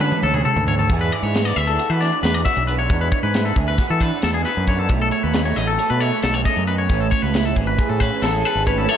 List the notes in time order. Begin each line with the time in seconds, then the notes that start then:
Already playing: D3 F#3 F#4 A4
0.00 C#4 B4, high tom
0.12 mid tom
0.23 D2 B2 A4, mid tom
0.34 G#4, mid tom
0.45 C#3 A4, mid tom
0.56 D2, floor tom
0.67 D3 C#5, floor tom
0.79 A4, floor tom
0.90 E2 E3 D4 E4 G#4, kick, closed hi-hat
1.01 B4
1.12 D5, closed hi-hat
1.23 G#2 C#5
1.35 E4, snare, closed hi-hat
1.45 D5
1.56 D2 E3 E5, closed hi-hat
1.67 A4
1.79 F#4, closed hi-hat
1.90 E3 B4
2.01 D4 D5, snare, closed hi-hat
2.23 E2 B2 B4, snare, closed hi-hat
2.34 D5
2.45 F#4 E5, kick, closed hi-hat
2.57 B1
2.67 E2 D4 B4, closed hi-hat
2.79 C#5
2.89 E2 D4, kick, closed hi-hat
3.01 B4
3.12 C#5, kick, closed hi-hat
3.23 G#2 B4
3.34 E4, snare, closed hi-hat
3.45 A4
3.56 D2 E3 G#4, kick, closed hi-hat
3.68 B4
3.78 F#4, kick, snare, closed hi-hat
3.90 E3 A4
4.00 D4 B4, kick, closed hi-hat
4.22 E2 B2 A4, snare, closed hi-hat
4.34 G#4
4.45 F#4 B4, snare, closed hi-hat
4.57 F#2
4.67 E2 D4 C#5, kick, closed hi-hat
4.79 A4
4.89 B1 B2 A3, kick, closed hi-hat
5.02 A4
5.11 C#5, closed hi-hat
5.23 D#2 B4
5.33 C#4, snare, closed hi-hat
5.45 D#4 C#5
5.56 A1 F#3 D#5, snare, closed hi-hat
5.67 A4
5.79 A4, closed hi-hat
5.90 B2 B4
6.01 A3 C#5, closed hi-hat
6.23 B1 D#3 A4, snare, closed hi-hat
6.34 C#5
6.45 C#3 D#5, kick, closed hi-hat
6.57 F#2
6.67 B2 B4, closed hi-hat
6.78 C#5
6.89 A1 A2 C#4, kick, closed hi-hat
7.01 A4
7.11 C#5, kick, closed hi-hat
7.22 C#2 B4
7.34 E4, snare, closed hi-hat
7.45 A4
7.56 G#1 E3 G#4, kick, closed hi-hat
7.67 B4
7.78 G#4, kick, closed hi-hat
7.89 A2 A4
8.00 C#4 B4, kick, closed hi-hat
8.22 A1 E2 A4, snare, closed hi-hat
8.33 G#4
8.45 G#4 B4, closed hi-hat
8.55 G#1
8.67 A2 C#4 B4 C#5, kick, closed hi-hat
8.78 A4
8.89 F#2 F#3 A3 E4 F#4 A4 C#5